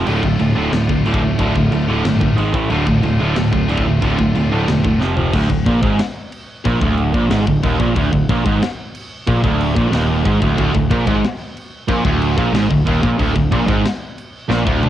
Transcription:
0.06 picked electric bass D1, distorted electric guitar D2 A2 D3 A3 F4, china, crash
0.23 picked electric bass D1, distorted electric guitar D2 A2, kick
0.39 picked electric bass D1, distorted electric guitar D2 A2, china
0.55 picked electric bass D1, distorted electric guitar D2 A2 D3 A3 F4
0.72 picked electric bass D1, distorted electric guitar D2 A2, snare, china
0.89 distorted electric guitar D2 A2, kick
1.05 picked electric bass D1, distorted electric guitar D2 A2 D3, china
1.14 kick
1.23 distorted electric guitar D2 A2
1.39 picked electric bass D1, distorted electric guitar D2 A2 D3 A3 F4, kick, china
1.55 picked electric bass D1, distorted electric guitar D2 A2, kick
1.72 picked electric bass D1, distorted electric guitar D2 A2, china
1.87 picked electric bass D1, distorted electric guitar D2 A2 D3 A3 F4
2.05 picked electric bass G1, distorted electric guitar D2 A2, snare, china
2.21 distorted electric guitar D2 A2, kick
2.38 picked electric bass G#1, distorted electric guitar G#2 D#3 G#3, china
2.54 picked electric bass A1, distorted electric guitar A2 E3 A3, kick
2.70 picked electric bass D1, distorted electric guitar D2 A2 D3 A3 F4, china
2.87 picked electric bass D1, distorted electric guitar D2 A2, kick
3.03 picked electric bass D1, distorted electric guitar D2 A2, china
3.19 picked electric bass D1, distorted electric guitar D2 A2 D3 A3 F4
3.36 picked electric bass D1, distorted electric guitar D2 A2, snare, china
3.53 distorted electric guitar D2 A2, kick
3.68 picked electric bass D1, distorted electric guitar D2 A2 D3, china
3.77 kick
3.86 distorted electric guitar D2 A2
4.02 picked electric bass D1, distorted electric guitar D2 A2 D3 A3 F4, kick, china
4.19 picked electric bass D1, distorted electric guitar D2 A2, kick
4.35 picked electric bass D1, distorted electric guitar D2 A2, china
4.51 picked electric bass D1, distorted electric guitar D2 A2 D3 A3 F4
4.68 picked electric bass E1, distorted electric guitar D2 A2, snare, china
4.84 distorted electric guitar D2 A2, kick
4.99 picked electric bass F1, distorted electric guitar F2 C3 F3, snare
5.16 picked electric bass F1, distorted electric guitar F2 C3 F3, floor tom
5.33 picked electric bass D1, distorted electric guitar D2, kick, crash
5.50 picked electric bass D1, distorted electric guitar D2, kick
5.66 picked electric bass A#1, distorted electric guitar A#2, kick, crash
5.82 picked electric bass G#1, distorted electric guitar G#2, kick
5.99 snare, crash
6.32 crash
6.65 picked electric bass A#1, distorted electric guitar A#2, kick, crash
6.81 picked electric bass D1, distorted electric guitar D2, kick
6.97 crash
7.14 picked electric bass A#1, distorted electric guitar A#2, kick
7.30 picked electric bass G#1, distorted electric guitar G#2, snare, crash
7.46 picked electric bass D1, distorted electric guitar D2, kick
7.63 picked electric bass D#1, distorted electric guitar D#2, kick, crash
7.79 picked electric bass A#1, distorted electric guitar A#2, kick
7.95 picked electric bass D1, distorted electric guitar D2, kick, crash
8.12 picked electric bass D1, distorted electric guitar D2, kick
8.29 picked electric bass A#1, distorted electric guitar A#2, kick, crash
8.46 picked electric bass G#1, distorted electric guitar G#2, kick
8.62 snare, crash
8.95 crash
9.27 picked electric bass A#1, distorted electric guitar A#2, kick, crash
9.44 picked electric bass D1, distorted electric guitar D2, kick
9.61 crash
9.76 picked electric bass A#1, distorted electric guitar A#2, kick
9.93 picked electric bass D#1, distorted electric guitar D#2, snare, crash
10.25 picked electric bass G#1, distorted electric guitar G#2, kick, crash
10.42 picked electric bass D1, distorted electric guitar D2, kick
10.58 picked electric bass D1, distorted electric guitar D2, kick, crash
10.75 picked electric bass D1, distorted electric guitar D2, kick
10.91 picked electric bass A#1, distorted electric guitar A#2, kick, crash
11.07 picked electric bass G#1, distorted electric guitar G#2, kick
11.24 snare, crash
11.57 crash
11.89 picked electric bass A#1, distorted electric guitar A#2, kick, crash
12.05 picked electric bass D1, distorted electric guitar D2, kick
12.22 crash
12.38 picked electric bass A#1, distorted electric guitar A#2, kick
12.53 picked electric bass G#1, distorted electric guitar G#2, snare, crash
12.71 picked electric bass D1, distorted electric guitar D2, kick
12.87 picked electric bass D#1, distorted electric guitar D#2, kick, crash
13.03 picked electric bass A#1, distorted electric guitar A#2, kick
13.19 picked electric bass D1, distorted electric guitar D2, kick, crash
13.36 picked electric bass D1, distorted electric guitar D2, kick
13.52 picked electric bass A#1, distorted electric guitar A#2, kick, crash
13.68 picked electric bass G#1, distorted electric guitar G#2, kick
13.85 snare, crash
14.18 crash
14.50 picked electric bass A#1, distorted electric guitar A#2, snare
14.66 picked electric bass D1, distorted electric guitar D2, kick
14.83 high tom

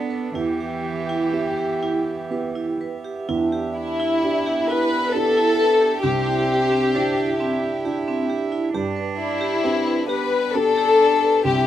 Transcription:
Already playing: cello B3, upright piano B3 D4 A4, harmonium B3 A4 D5, violin section D4
0.10 vibraphone B4
0.34 upright piano E2, cello E3, vibraphone E4, violin section G4, harmonium G4 E5
0.60 vibraphone G4
1.09 vibraphone E4
1.32 upright piano B3 E4 G4, vibraphone E5
1.58 vibraphone G4
1.83 vibraphone E4
2.31 upright piano B3 E4 G4, vibraphone B4
2.55 vibraphone E4
2.81 vibraphone B4
3.05 vibraphone G4
3.28 upright piano E2, harmonium D4 G4 E5, vibraphone E4
3.52 vibraphone G4
3.76 violin section E4
4.00 vibraphone E4
4.23 cello B3, upright piano D4 E4 G4, vibraphone D5
4.46 vibraphone G4
4.68 vibraphone E4, violin section B4
5.13 upright piano D4 E4 G4, violin section A4, vibraphone B4
5.37 vibraphone E4
5.59 vibraphone B4
5.81 vibraphone G4
6.03 upright piano C2, vibraphone C4, cello C4, violin section G4
6.26 vibraphone E4
6.72 vibraphone C4
6.95 cello D4, upright piano D4 E4 G4, vibraphone C5
7.17 vibraphone E4
7.39 vibraphone C4, cello E4
7.85 upright piano D4 E4 G4, vibraphone G4
8.08 vibraphone C4
8.30 vibraphone G4
8.52 vibraphone E4
8.74 upright piano G2, cello D4, harmonium D4 G4 D5, vibraphone G4
8.96 vibraphone B4
9.18 violin section E4
9.41 vibraphone G4
9.64 cello C4, upright piano D4 G4 B4, vibraphone G5
9.86 vibraphone B4
10.09 cello B3, vibraphone G4, violin section B4
10.54 upright piano B3 D4 G4, cello D4, violin section A4, vibraphone D5
10.77 vibraphone G4
11.00 vibraphone D5
11.23 vibraphone B4
11.44 upright piano C2, vibraphone C4, cello E4, violin section G4, harmonium E5

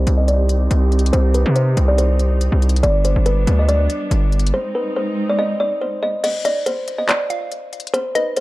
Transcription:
Already playing: string section C3 C4 D#4 G4, kalimba C5
0.07 808-style bass C2, closed hi-hat
0.18 kalimba D#5
0.28 kalimba D5, closed hi-hat
0.49 closed hi-hat
0.71 808-style bass C2, closed hi-hat
0.92 closed hi-hat
0.99 closed hi-hat
1.06 closed hi-hat
1.13 808-style bass C2, kalimba C5, closed hi-hat
1.34 kalimba B4, closed hi-hat
1.46 808-style bass C3
1.56 kalimba C5, closed hi-hat
1.77 808-style bass C2, closed hi-hat
1.88 kalimba D5
1.98 kalimba C5, closed hi-hat
2.19 closed hi-hat
2.41 closed hi-hat
2.52 808-style bass C2
2.62 closed hi-hat
2.69 closed hi-hat
2.76 closed hi-hat
2.83 808-style bass G1, string section G3 B3 D4, kalimba D5, closed hi-hat
3.05 kalimba C5, closed hi-hat
3.16 808-style bass G1
3.26 kalimba B4, closed hi-hat
3.47 808-style bass D2, closed hi-hat
3.59 kalimba D#5
3.68 kalimba D5, closed hi-hat
3.90 closed hi-hat
4.11 808-style bass G1, closed hi-hat
4.32 closed hi-hat
4.39 closed hi-hat
4.47 closed hi-hat
4.54 string section G#3 C4 D#4, kalimba C5
4.75 kalimba B4
4.96 kalimba C5
5.29 kalimba D5
5.39 kalimba D#5
5.60 kalimba D5
5.82 kalimba C5
6.03 kalimba D#5
6.24 kalimba D#5, closed hi-hat, crash
6.45 kalimba D5, synth pluck D#5, closed hi-hat
6.66 kalimba C5, closed hi-hat
6.88 closed hi-hat
6.98 kalimba D#5
7.09 kalimba D5, clap, closed hi-hat
7.30 synth pluck F5, closed hi-hat
7.52 closed hi-hat
7.73 closed hi-hat
7.80 closed hi-hat
7.87 closed hi-hat
7.94 kalimba C5, closed hi-hat
8.15 kalimba B4, synth pluck D#5, closed hi-hat
8.36 kalimba C5, closed hi-hat

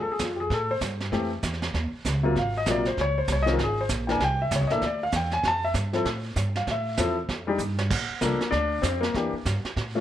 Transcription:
0.02 grand piano A4
0.07 muted upright bass stroke
0.12 grand piano G#4
0.19 upright bass F2, grand piano F4, kick, snare, hi-hat pedal
0.36 grand piano G4 G#4
0.50 upright bass A2, grand piano A4, brush sweep, kick, snare
0.71 grand piano C5
0.81 upright bass G2, kick, snare, hi-hat pedal
1.00 snare
1.12 upright bass F2, grand piano E3 A3 C4 G4, brush sweep, kick, snare
1.43 upright bass E2, kick, snare, hi-hat pedal
1.53 snare
1.62 snare
1.64 snare
1.74 upright bass D#2, brush sweep, kick, snare
1.92 muted upright bass stroke
2.05 upright bass C#2, kick, snare, hi-hat pedal
2.23 grand piano C3 F#3 A#3 F4
2.35 upright bass G#1, grand piano F5, brush sweep, kick, snare
2.58 grand piano D#5
2.66 upright bass A#1, grand piano C3 F#3 A#3 F4, kick, snare, hi-hat pedal
2.71 grand piano D5
2.85 grand piano C5, snare
2.97 upright bass C#2, grand piano C#5, brush sweep, kick, snare
3.18 grand piano C5
3.28 upright bass C2, kick, snare, hi-hat pedal
3.32 grand piano C#5
3.42 grand piano D#3 D#5
3.47 grand piano C4 C#4 F4, snare
3.53 grand piano A#4
3.58 upright bass G#1, brush sweep, kick, snare
3.63 grand piano G#4
3.81 grand piano C5
3.89 upright bass A#1, kick, snare, hi-hat pedal
4.08 grand piano E3 A#3 D4 A#4 G#5, snare
4.20 upright bass C2, grand piano G5, brush sweep, kick, snare
4.42 grand piano E5
4.51 upright bass C#2, kick, snare, hi-hat pedal
4.56 grand piano C#5
4.61 upright bass C2
4.67 upright bass A#1, grand piano E3 A#3 D4 D#5, snare
4.71 grand piano A4 E5
4.82 upright bass D2, brush sweep, kick, snare
4.86 grand piano D5
5.03 grand piano F5
5.12 upright bass E2, kick, snare, hi-hat pedal
5.16 grand piano G5
5.31 grand piano G#5, snare
5.43 upright bass F2, brush sweep, kick, snare
5.48 grand piano A5
5.64 grand piano E5
5.74 upright bass G2, kick, snare, hi-hat pedal
5.93 grand piano F3 C4 E4 A4, snare
6.05 upright bass A2, brush sweep, kick, snare
6.36 upright bass G2, kick, snare, hi-hat pedal
6.56 grand piano F5, snare
6.67 upright bass A2, brush sweep, kick, snare
6.71 grand piano E5
6.97 upright bass E2, grand piano F3 C4 E4 A4, kick, snare, hi-hat pedal
7.29 upright bass F2, brush sweep, kick, snare
7.47 grand piano G3 D4 D#4 G4
7.58 upright bass G2, hi-hat pedal
7.79 snare
7.90 upright bass A#1, brush sweep, kick, snare, crash
8.10 muted upright bass stroke
8.21 upright bass C2, grand piano F3 A#3 D4 A4, kick, snare, hi-hat pedal
8.40 muted upright bass stroke, snare
8.51 upright bass D2, grand piano D4, brush sweep, kick, snare
8.82 upright bass F2, grand piano C4, kick, snare, hi-hat pedal
9.01 grand piano A#3, snare
9.15 upright bass E2, grand piano E3 A#3 D4 G4, brush sweep, kick, snare
9.33 muted upright bass stroke
9.45 upright bass G2, kick, snare, hi-hat pedal
9.64 muted upright bass stroke, snare
9.76 upright bass A2, brush sweep, kick, snare
9.95 grand piano F3 A3 C#4 F4

